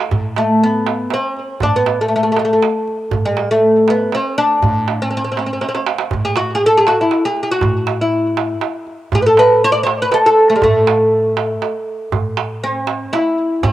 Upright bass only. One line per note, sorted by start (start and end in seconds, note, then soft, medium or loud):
0.12 1.02 A2 medium
1.62 2.52 A2 medium
3.13 4.03 A2 medium
4.63 5.53 A2 medium
6.13 7.03 A2 medium
7.62 8.53 A2 loud
9.13 10.03 A2 medium
10.63 11.53 A2 loud
12.13 13.03 A2 medium
13.64 13.73 A2 medium